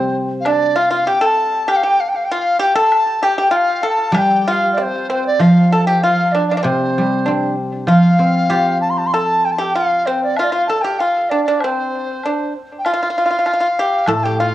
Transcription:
Already playing: C3 G3 A3 C4 C5
0.40 F5
0.45 D4 D5, high woodblock
0.76 F4 F5
0.91 F4 F5
1.07 G4 G5
1.21 A4
1.26 A5
1.68 G4 G5, high woodblock
1.76 F5
1.83 G4 G5
2.00 F5
2.09 G5
2.16 F5
2.25 G5
2.31 F4 F5
2.59 G4 G5
2.75 A4 A5
2.92 high woodblock
3.23 G4 G5
3.38 G4 G5
3.51 F4
3.56 F5
3.83 A4
3.88 A5
4.12 G3 G4, high woodblock
4.18 G5
4.48 F4
4.52 F5
4.73 D5
4.77 C4, low woodblock
4.83 C5
5.10 C4 C5
5.27 D5
5.39 F3 F4 F5
5.72 A4 A5
5.86 G4 G5
6.01 F4 F5
6.32 D4 D5
6.48 D4 D5
6.54 D4 D5 F5
6.63 C3 C4 C5
6.98 G3
7.26 C4 D4
7.87 F3 F4
7.91 F5
8.19 C4
8.50 F4 G4
8.81 A5
8.90 C6
8.98 A5
9.07 C6
9.14 A4 A5
9.45 G5
9.52 A5
9.58 G4 G5
9.75 F4 F5
10.06 C4 C5
10.23 D5
10.36 F4 F5, high woodblock
10.43 D5
10.51 F4 F5
10.67 A4 A5
10.82 G4 G5
10.99 F4 F5, high woodblock
11.30 D4 D5
11.44 D4 D5
11.60 C4 C5, high woodblock
12.23 D4, high woodblock
12.79 G5
12.85 F4 F5, high woodblock
12.94 F4
13.03 F4
13.10 F4
13.18 F4
13.26 F4
13.30 F4
13.39 F4
13.46 F4, high woodblock
13.53 F4
13.60 F4
13.79 G4
14.06 A2 A4 A5, high woodblock
14.24 G4 G5
14.38 F4 F5

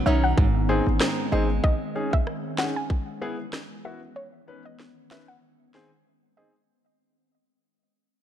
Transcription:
Already playing: B2 D#3 B3
0.06 B1 F#3 C#4 D#4 C#5 E5
0.24 F#5
0.38 G#1 G#2, kick
0.69 C4 D#4 G#4
0.87 G#1
1.01 G#3 C4 D#4, cross-stick, snare
1.32 G#1 G#3 C4 D#4 G#4 D#5
1.64 G#3 D#5, kick
1.95 C#4 D#4 G#4
2.13 E5, kick
2.27 cross-stick
2.58 C#4 D#4 G#4 F#5, snare
2.76 G#5
2.90 B3, kick
3.21 B3 E4 G#4
3.53 cross-stick, snare
3.85 B3 E4 F#4 E5
4.16 D#3 C#5
4.48 C#4 D#4 B4
4.65 D#5
4.80 snare
5.11 C#4 D#4 B4 E5, snare
5.28 F#5
5.74 C4 D#4 G#4, snare
6.37 C4 D#4 G#4 D#5

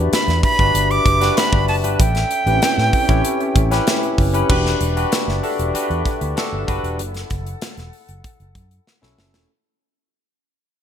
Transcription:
Already playing: D4 E4 F#4 G4 B4 D5 E5
0.12 B5, muted fingered electric bass stroke, snare, closed hi-hat
0.28 E2, snare, closed hi-hat
0.43 B5, kick, open hi-hat
0.59 G1 D4 F#4 G4 B4, kick, closed hi-hat
0.74 G1, closed hi-hat
0.91 D6, closed hi-hat
1.06 F#1, kick, closed hi-hat
1.21 D4 F#4 G4 B4, snare, closed hi-hat
1.37 B5, snare, closed hi-hat
1.53 G1, kick
1.68 F#1 A5, open hi-hat
1.84 G1 D4 F#4 G4 B4, closed hi-hat
1.99 A1 C#4 A4 G5, kick, closed hi-hat
2.15 snare, closed hi-hat
2.31 closed hi-hat
2.46 A1 C4 E4 G4 B4, closed hi-hat
2.53 C#4
2.62 snare, closed hi-hat
2.78 A2, snare
2.93 kick, open hi-hat
3.08 A1 C#4 E4 G4 C#5, kick, closed hi-hat
3.25 closed hi-hat
3.40 closed hi-hat
3.56 A1, kick, closed hi-hat
3.71 C#4 E4 G4 B4, snare, closed hi-hat
3.87 snare, closed hi-hat
4.03 closed hi-hat
4.18 F#1, kick, open hi-hat
4.33 C#4 E4 G4 B4, closed hi-hat
4.49 E1 D4 E4 F#4 G4 B4 D5 E5, kick, crash
4.66 snare
4.81 E1, closed hi-hat
4.96 D4 F#4 G4 B4, closed hi-hat
5.12 snare, closed hi-hat
5.28 F#1, snare
5.43 D4 F#4 G4 A4, open hi-hat
5.59 E1, closed hi-hat
5.74 D4 F#4 G4 B4, muted fingered electric bass stroke, closed hi-hat
5.90 E2, closed hi-hat
6.05 kick, closed hi-hat
6.21 D2, closed hi-hat
6.36 D4 F#4 G4 A4, snare, closed hi-hat
6.52 G1
6.67 F#1 D4 F#4 G4 B4, kick, closed hi-hat
6.83 E1, closed hi-hat
6.99 F#1 A4 F#5, closed hi-hat
7.14 snare, closed hi-hat
7.30 F#1, kick, closed hi-hat
7.46 closed hi-hat
7.62 snare, closed hi-hat
7.77 E1, snare, closed hi-hat
7.93 open hi-hat
8.09 F#1, closed hi-hat
8.24 kick, closed hi-hat
8.40 F#1, closed hi-hat
8.55 F#2, kick, closed hi-hat
8.71 closed hi-hat
8.87 snare
9.01 B1 C#4 E4 F#4 A4, snare
9.18 F#1, snare
9.33 E1, snare

